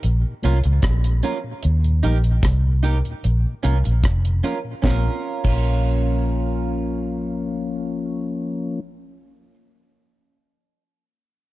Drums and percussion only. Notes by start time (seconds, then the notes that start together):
0.03 closed hi-hat
0.43 closed hi-hat
0.64 closed hi-hat
0.82 kick, cross-stick, closed hi-hat
1.04 closed hi-hat
1.23 closed hi-hat
1.63 closed hi-hat
1.84 closed hi-hat
2.04 closed hi-hat
2.24 closed hi-hat
2.43 kick, cross-stick, closed hi-hat
2.84 closed hi-hat
3.05 closed hi-hat
3.24 closed hi-hat
3.64 closed hi-hat
3.85 closed hi-hat
4.04 kick, cross-stick, closed hi-hat
4.25 closed hi-hat
4.44 closed hi-hat
4.84 kick, snare
5.44 kick, crash